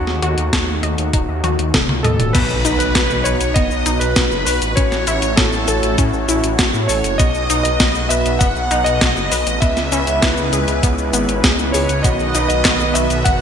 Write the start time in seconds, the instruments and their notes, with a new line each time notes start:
Already playing: analog synth pad A3 D#4 F#4, electric grand piano F#4
0.07 detuned saw bass D#2, snare
0.22 detuned saw bass D#2, synth arpeggio sound F#4, closed hi-hat
0.38 detuned saw bass D#2, closed hi-hat
0.53 detuned saw bass D#2, synth arpeggio sound A4, kick, snare, closed hi-hat
0.68 detuned saw bass D#2
0.83 detuned saw bass D#2, synth arpeggio sound D#5, closed hi-hat
0.98 detuned saw bass D#2, closed hi-hat
1.13 detuned saw bass D#1, synth arpeggio sound D#4, kick, closed hi-hat
1.28 detuned saw bass D#2
1.44 detuned saw bass D#2, synth arpeggio sound F#4, closed hi-hat, high tom
1.59 detuned saw bass D#2, closed hi-hat
1.74 detuned saw bass D#1, synth arpeggio sound A4, kick, snare, closed hi-hat, mid tom
1.89 detuned saw bass C#2, mid tom
2.03 detuned saw bass D#2, electric grand piano A4, synth arpeggio sound D#5, closed hi-hat, mid tom
2.19 detuned saw bass D#1, closed hi-hat, mid tom
2.33 detuned saw bass B1, synth arpeggio sound B3, analog synth pad B3 D#4 F#4, electric grand piano B4, string machine B4, kick, closed hi-hat, crash, impact, shaker
2.50 detuned saw bass B1, shaker
2.65 detuned saw bass B1, synth arpeggio sound D#4, closed hi-hat, shaker
2.79 detuned saw bass B1, electric grand piano B4, string machine B4, closed hi-hat, shaker
2.95 detuned saw bass B1, synth arpeggio sound F#4, kick, snare, closed hi-hat, shaker
3.10 detuned saw bass B1, shaker
3.24 detuned saw bass B1, synth arpeggio sound B4, electric grand piano C#5, string machine C#5, closed hi-hat, shaker
3.41 detuned saw bass B1, closed hi-hat, shaker
3.54 detuned saw bass F#1, synth arpeggio sound B3, electric grand piano D#5, string machine D#5, kick, closed hi-hat, shaker
3.71 detuned saw bass B1, shaker
3.86 detuned saw bass B1, synth arpeggio sound D#4, closed hi-hat, shaker
4.00 detuned saw bass B1, electric grand piano B4, string machine B4, closed hi-hat, shaker
4.16 detuned saw bass B1, synth arpeggio sound F#4, kick, snare, closed hi-hat, shaker
4.31 detuned saw bass F#1, shaker
4.45 detuned saw bass B1, string machine B4, electric grand piano B4, synth arpeggio sound B4, open hi-hat, shaker
4.62 detuned saw bass A1, closed hi-hat, shaker
4.76 detuned saw bass A1, analog synth pad A3 C#4 E4 C#5, synth arpeggio sound C#4, electric grand piano C#5, string machine C#5, kick, closed hi-hat, shaker
4.92 detuned saw bass A1, snare, shaker
5.07 detuned saw bass A1, synth arpeggio sound E4, closed hi-hat, shaker
5.22 detuned saw bass A1, closed hi-hat, shaker
5.36 detuned saw bass A1, synth arpeggio sound F#4, electric grand piano A4, string machine A4, kick, snare, closed hi-hat, shaker
5.53 detuned saw bass A1, shaker
5.68 detuned saw bass A1, synth arpeggio sound A4, closed hi-hat, shaker
5.83 detuned saw bass A1, closed hi-hat, shaker
5.98 detuned saw bass A2, synth arpeggio sound C#4, kick, closed hi-hat, shaker
6.13 detuned saw bass A1, shaker
6.28 detuned saw bass A1, synth arpeggio sound E4, closed hi-hat, shaker
6.44 detuned saw bass A1, closed hi-hat, shaker
6.59 detuned saw bass A1, synth arpeggio sound F#4, kick, snare, closed hi-hat, shaker
6.74 detuned saw bass A2, shaker
6.88 detuned saw bass A1, synth arpeggio sound A4, electric grand piano C#5, string machine C#5, open hi-hat, shaker
7.04 detuned saw bass F#1, closed hi-hat, shaker
7.18 detuned saw bass B1, synth arpeggio sound B3, analog synth pad B3 B4, electric grand piano D#5, string machine D#5, kick, closed hi-hat, shaker
7.35 detuned saw bass B1, shaker
7.50 detuned saw bass B1, synth arpeggio sound D#4, closed hi-hat, shaker
7.63 detuned saw bass B1, electric grand piano D#5, string machine D#5, closed hi-hat, shaker
7.80 detuned saw bass B1, synth arpeggio sound F#4, kick, snare, closed hi-hat, shaker
7.95 detuned saw bass B1, shaker
8.09 detuned saw bass B1, synth arpeggio sound B4, string machine E5, electric grand piano E5, closed hi-hat, shaker
8.25 detuned saw bass B1, closed hi-hat, shaker
8.39 detuned saw bass F#1, synth arpeggio sound B3, electric grand piano F#5, string machine F#5, kick, closed hi-hat, shaker
8.56 detuned saw bass B1, shaker
8.71 detuned saw bass B1, synth arpeggio sound D#4, closed hi-hat, shaker
8.84 detuned saw bass B1, electric grand piano D#5, string machine D#5, closed hi-hat, shaker
9.01 detuned saw bass B1, synth arpeggio sound F#4, kick, snare, closed hi-hat, shaker
9.16 detuned saw bass F#1, shaker
9.30 detuned saw bass B1, synth arpeggio sound B4, electric grand piano D#5, string machine D#5, open hi-hat, shaker
9.47 detuned saw bass A1, closed hi-hat, shaker
9.60 detuned saw bass C#2, analog synth pad G#3 B3 C#4 E4, synth arpeggio sound B3, string machine E5, electric grand piano E5, kick, closed hi-hat, shaker
9.77 detuned saw bass C#2, snare, shaker
9.92 detuned saw bass C#2, synth arpeggio sound C#4, closed hi-hat, shaker
10.07 detuned saw bass C#2, closed hi-hat, shaker
10.21 detuned saw bass C#2, synth arpeggio sound E4, string machine B4, electric grand piano B4, kick, snare, closed hi-hat, shaker
10.37 detuned saw bass C#2, shaker
10.53 detuned saw bass C#2, synth arpeggio sound G#4, closed hi-hat, shaker
10.68 detuned saw bass C#2, closed hi-hat, shaker
10.83 detuned saw bass C#2, synth arpeggio sound B3, kick, closed hi-hat, shaker
10.98 detuned saw bass C#2, shaker
11.13 detuned saw bass G#1, synth arpeggio sound B3, closed hi-hat, shaker
11.29 detuned saw bass G#1, closed hi-hat, shaker
11.44 detuned saw bass C#2, synth arpeggio sound G#4, kick, snare, closed hi-hat, shaker
11.59 detuned saw bass C#2, shaker
11.72 detuned saw bass C#2, synth arpeggio sound G#4, electric grand piano C#5, string machine C#5, open hi-hat, shaker
11.89 detuned saw bass C#2, closed hi-hat, shaker
12.03 detuned saw bass B1, analog polysynth B2 D#3 F#4 B4, synth arpeggio sound B3, analog synth pad B3 F#4, electric grand piano D#5, string machine D#5, kick, closed hi-hat, shaker
12.19 detuned saw bass B1, shaker
12.35 detuned saw bass B1, synth arpeggio sound D#4, closed hi-hat, shaker
12.48 detuned saw bass B1, electric grand piano D#5, string machine D#5, closed hi-hat, shaker
12.65 detuned saw bass B1, synth arpeggio sound F#4, kick, snare, clap, closed hi-hat, shaker
12.80 detuned saw bass B1, shaker
12.94 detuned saw bass B1, synth arpeggio sound B4, electric grand piano E5, string machine E5, closed hi-hat, shaker
13.10 detuned saw bass B1, closed hi-hat, shaker
13.24 detuned saw bass F#1, synth arpeggio sound B3, string machine F#5, electric grand piano F#5, kick, closed hi-hat, shaker